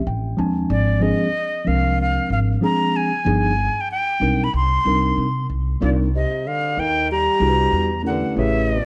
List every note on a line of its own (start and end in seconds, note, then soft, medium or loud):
0.06 0.31 A1 medium
0.06 0.37 G5 medium
0.37 0.63 D#2 medium
0.37 0.99 F3 medium
0.37 1.00 G#3 medium
0.37 1.01 C4 medium
0.37 1.01 D4 medium
0.37 1.30 G#5 medium
0.37 0.68 A5 medium
0.70 1.11 G#1 medium
0.70 1.04 D5 medium
1.00 1.27 F3 medium
1.00 1.27 G#3 medium
1.00 1.28 C4 medium
1.00 1.28 D4 medium
1.00 1.28 G#4 medium
1.00 1.69 D#5 medium
1.65 2.16 C2 medium
1.65 2.57 F3 medium
1.65 2.57 G#3 soft
1.65 2.58 C4 medium
1.65 2.58 D4 medium
1.65 2.58 A#4 medium
1.65 1.99 F5 medium
2.01 2.29 F5 medium
2.30 2.55 G#1 medium
2.30 2.39 F5 medium
2.61 3.10 F3 medium
2.61 3.11 G#3 medium
2.61 3.11 C4 medium
2.61 3.11 D4 medium
2.61 3.11 G#4 medium
2.61 2.98 A#5 medium
2.96 3.82 G#5 medium
3.25 3.67 G1 loud
3.25 3.51 F3 medium
3.25 3.51 B3 medium
3.25 3.51 D4 medium
3.25 3.52 D#4 medium
3.25 3.52 G#4 medium
3.80 3.91 G5 medium
3.91 4.46 G5 loud
4.20 4.46 B1 medium
4.20 4.46 G3 medium
4.20 4.47 C4 medium
4.20 4.47 D4 medium
4.20 4.47 D#4 medium
4.20 4.47 A#4 medium
4.44 4.54 B5 medium
4.54 4.79 C2 medium
4.54 5.47 C6 loud
4.85 5.10 C2 medium
4.85 5.26 G3 medium
4.85 5.26 C4 medium
4.85 5.26 D4 medium
4.85 5.27 D#4 medium
4.85 5.27 A#4 medium
5.18 5.42 C3 medium
5.49 5.74 C2 medium
5.81 6.23 C2 loud
5.81 5.96 A#2 medium
5.81 6.06 G3 medium
5.81 6.06 C4 medium
5.81 6.07 D4 medium
5.81 6.07 D#4 medium
5.81 6.08 A#4 medium
5.81 5.90 D5 medium
6.14 6.48 C3 medium
6.14 6.48 D#5 medium
6.46 6.81 D3 medium
6.46 6.81 F5 medium
6.77 7.27 D#2 medium
6.77 7.10 D#3 medium
6.77 7.10 G5 medium
7.12 8.02 G3 medium
7.12 8.02 A#5 loud
7.40 7.65 C2 medium
7.40 7.89 G3 medium
7.40 7.90 D4 medium
7.40 7.90 E4 medium
7.40 7.90 F#4 medium
7.40 7.50 G#4 medium
7.49 7.94 B4 medium
7.73 8.23 E2 medium
8.03 8.35 A3 medium
8.03 8.35 C#4 medium
8.03 8.36 E4 medium
8.03 8.37 G4 medium
8.03 8.14 A#4 medium
8.03 8.36 F#5 medium
8.08 8.36 D3 medium
8.12 8.37 B4 medium
8.36 8.78 A1 medium
8.36 8.85 C#3 medium
8.36 8.77 A3 medium
8.36 8.77 C#4 medium
8.36 8.77 E4 medium
8.36 8.78 G4 medium
8.36 8.78 B4 medium
8.36 8.85 E5 medium